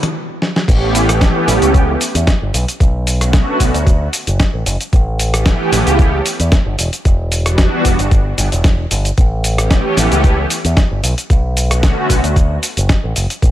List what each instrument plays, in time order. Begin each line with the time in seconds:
0.03 closed hi-hat, mid tom
0.42 snare
0.56 snare
0.68 picked electric bass A1, analog synth pad E3 A3, kick, closed hi-hat, crash, cabasa
0.95 open hi-hat, cabasa
1.09 analog synth pad E3 A3 B3 C#4 G4, cross-stick, closed hi-hat, cabasa
1.21 kick, snare, closed hi-hat, cabasa
1.48 picked electric bass A1, snare, open hi-hat, cabasa
1.62 picked electric bass C#2, closed hi-hat, cabasa
1.74 kick, closed hi-hat, cabasa
2.01 open hi-hat, cabasa
2.15 picked electric bass E2, closed hi-hat, cabasa
2.27 kick, snare, closed hi-hat, cabasa
2.42 picked electric bass G1
2.54 picked electric bass B1, open hi-hat, cabasa
2.68 closed hi-hat, cabasa
2.80 picked electric bass B1, kick, closed hi-hat, cabasa
3.07 open hi-hat, cabasa
3.21 analog synth pad D3 A3 B3 C#4 F#4, cross-stick, closed hi-hat, cabasa
3.33 kick, snare, closed hi-hat, cabasa
3.60 picked electric bass B1, kick, open hi-hat, cabasa
3.74 picked electric bass D2, closed hi-hat, cabasa
3.87 kick, closed hi-hat, cabasa
4.13 open hi-hat, cabasa
4.27 picked electric bass F#1, closed hi-hat, cabasa
4.40 kick, snare, closed hi-hat, cabasa
4.53 picked electric bass A1
4.66 picked electric bass F#1, open hi-hat, cabasa
4.81 closed hi-hat, cabasa
4.93 picked electric bass A1, kick, closed hi-hat, cabasa
5.19 open hi-hat, cabasa
5.33 analog synth pad E3 A3 B3 C#4 G4, cross-stick, closed hi-hat, cabasa
5.46 kick, snare, closed hi-hat, cabasa
5.72 picked electric bass A1, snare, open hi-hat, cabasa
5.86 picked electric bass C#2, closed hi-hat, cabasa
5.99 kick, closed hi-hat, cabasa
6.26 open hi-hat, cabasa
6.39 picked electric bass E2, closed hi-hat, cabasa
6.52 kick, snare, closed hi-hat, cabasa
6.66 picked electric bass G1
6.79 picked electric bass E1, open hi-hat, cabasa
6.93 closed hi-hat, cabasa
7.05 picked electric bass E1, kick, closed hi-hat, cabasa
7.32 open hi-hat, cabasa
7.45 analog synth pad E3 G3 B3 D4 F#4, cross-stick, closed hi-hat, cabasa
7.58 kick, snare, closed hi-hat, cabasa
7.85 picked electric bass E1, kick, open hi-hat, cabasa
7.99 picked electric bass G1, closed hi-hat, cabasa
8.11 kick, closed hi-hat, cabasa
8.38 picked electric bass G1, open hi-hat, cabasa
8.52 picked electric bass E1, closed hi-hat, cabasa
8.64 kick, snare, closed hi-hat, cabasa
8.91 picked electric bass G1, open hi-hat, cabasa
9.05 closed hi-hat, cabasa
9.18 picked electric bass A1, kick, closed hi-hat, cabasa
9.44 open hi-hat, cabasa
9.58 analog synth pad E3 A3 B3 C#4 G4, cross-stick, closed hi-hat, cabasa
9.71 kick, snare, closed hi-hat, cabasa
9.97 picked electric bass A1, snare, open hi-hat, cabasa
10.11 picked electric bass C#2, closed hi-hat, cabasa
10.24 kick, closed hi-hat, cabasa
10.50 open hi-hat, cabasa
10.64 picked electric bass E2, closed hi-hat, cabasa
10.77 kick, snare, closed hi-hat, cabasa
10.91 picked electric bass G1
11.03 picked electric bass B1, open hi-hat, cabasa
11.18 closed hi-hat, cabasa
11.30 picked electric bass B1, kick, closed hi-hat, cabasa
11.57 open hi-hat, cabasa
11.70 analog synth pad D3 A3 B3 C#4 F#4, cross-stick, closed hi-hat, cabasa
11.83 kick, snare, closed hi-hat, cabasa
12.10 picked electric bass B1, kick, open hi-hat, cabasa
12.24 picked electric bass D2, closed hi-hat, cabasa
12.36 kick, closed hi-hat, cabasa
12.63 open hi-hat, cabasa
12.77 picked electric bass F#1, closed hi-hat, cabasa
12.89 kick, snare, closed hi-hat, cabasa
13.04 picked electric bass A1
13.16 picked electric bass F#1, open hi-hat, cabasa
13.30 closed hi-hat, cabasa
13.42 picked electric bass A1, kick, closed hi-hat, cabasa